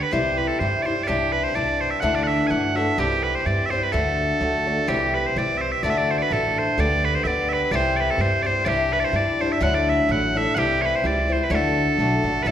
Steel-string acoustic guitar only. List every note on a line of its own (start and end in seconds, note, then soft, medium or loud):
0.00 0.11 D3 soft
0.00 0.11 G3 medium
0.00 0.12 B3 medium
0.00 0.12 G4 medium
0.11 0.60 C3 medium
0.11 0.60 E3 medium
0.11 0.60 G3 medium
0.11 0.61 E4 medium
0.11 0.61 G4 medium
0.60 0.86 E3 medium
0.60 0.86 G3 soft
0.60 0.85 E4 medium
0.60 0.84 G4 soft
0.85 1.07 G3 soft
0.85 1.08 E4 soft
0.85 1.08 G4 medium
1.07 1.55 C3 medium
1.07 1.54 E3 medium
1.07 1.54 G3 medium
1.07 1.54 D4 medium
1.07 1.55 G4 medium
1.54 2.01 E3 soft
1.54 2.03 G3 medium
1.54 2.03 D4 medium
1.54 2.04 G4 medium
2.02 2.50 D3 medium
2.02 2.48 E3 medium
2.02 2.49 A3 medium
2.02 2.50 D4 medium
2.02 2.51 F#4 medium
2.50 2.76 E3 medium
2.50 2.76 A3 medium
2.50 2.76 D4 medium
2.50 2.74 F#4 medium
2.75 2.98 A3 soft
2.75 2.99 D4 soft
2.75 2.98 F#4 medium
2.98 3.46 C3 medium
2.98 3.44 E3 medium
2.98 3.45 G3 medium
2.98 3.45 C4 medium
2.98 3.46 G4 medium
3.45 3.71 E3 soft
3.45 3.71 G3 soft
3.45 3.71 C4 medium
3.45 3.69 G4 medium
3.70 3.92 G3 soft
3.70 3.93 C4 soft
3.70 3.93 G4 medium
3.92 4.39 D3 medium
3.92 4.40 A3 medium
3.92 4.41 D4 medium
3.92 4.41 F#4 medium
4.40 4.66 D3 medium
4.40 4.66 A3 medium
4.40 4.65 D4 medium
4.40 4.64 F#4 medium
4.65 4.88 A3 soft
4.65 4.88 D4 medium
4.65 4.88 F#4 medium
4.88 5.36 C3 medium
4.88 5.35 E3 medium
4.88 5.36 G3 medium
4.88 5.36 C4 medium
4.88 5.36 G4 medium
5.37 5.83 E3 soft
5.37 5.84 G3 soft
5.37 5.85 C4 medium
5.37 5.85 G4 medium
5.84 6.30 D3 medium
5.84 6.31 A3 medium
5.84 6.32 D4 medium
5.84 6.32 F#4 medium
6.31 6.77 D3 medium
6.31 6.78 A3 soft
6.31 6.79 D4 medium
6.31 6.79 F#4 medium
6.78 7.24 D3 medium
6.78 7.25 G3 medium
6.78 7.26 B3 medium
6.78 7.27 G4 medium
7.25 7.72 D3 medium
7.25 7.72 G3 medium
7.25 7.73 B3 medium
7.25 7.73 G4 medium
7.72 8.20 C3 medium
7.72 8.19 E3 medium
7.72 8.19 G3 medium
7.72 8.20 C4 medium
7.72 8.20 G4 loud
8.20 8.45 E3 medium
8.20 8.46 G3 medium
8.20 8.45 C4 medium
8.20 8.44 G4 medium
8.45 8.65 G3 soft
8.45 8.66 C4 soft
8.45 8.66 G4 medium
8.65 9.14 C3 medium
8.65 9.13 E3 medium
8.65 9.13 G3 medium
8.65 9.13 D4 medium
8.65 9.15 E4 medium
9.13 9.39 E3 soft
9.13 9.40 G3 medium
9.13 9.40 D4 soft
9.13 9.38 E4 medium
9.39 9.62 G3 soft
9.39 9.61 D4 soft
9.39 9.61 E4 soft
9.61 10.09 D3 medium
9.61 10.08 F#3 medium
9.61 10.09 A3 medium
9.61 10.09 D4 medium
9.61 10.10 E4 medium
10.09 10.34 F#3 medium
10.09 10.35 A3 soft
10.09 10.34 D4 medium
10.09 10.33 E4 medium
10.34 10.57 A3 soft
10.34 10.57 D4 medium
10.34 10.56 E4 soft
10.56 11.04 C3 medium
10.56 11.02 E3 medium
10.56 11.04 G3 medium
10.56 11.04 C4 medium
10.56 11.04 E4 loud
11.03 11.29 E3 medium
11.03 11.29 G3 medium
11.03 11.28 C4 soft
11.03 11.27 E4 medium
11.28 11.50 G3 soft
11.28 11.51 C4 soft
11.28 11.51 E4 soft
11.50 11.99 D3 medium
11.50 11.98 A3 medium
11.50 12.00 D4 medium
11.50 11.99 F#4 medium
11.99 12.24 D3 soft
11.99 12.24 A3 medium
11.99 12.23 D4 medium
11.99 12.22 F#4 medium
12.24 12.46 A3 soft
12.24 12.46 D4 medium
12.24 12.46 F#4 medium
12.46 12.51 A2 medium
12.46 12.51 D3 medium
12.46 12.51 A3 medium
12.46 12.51 D4 medium
12.46 12.51 E4 medium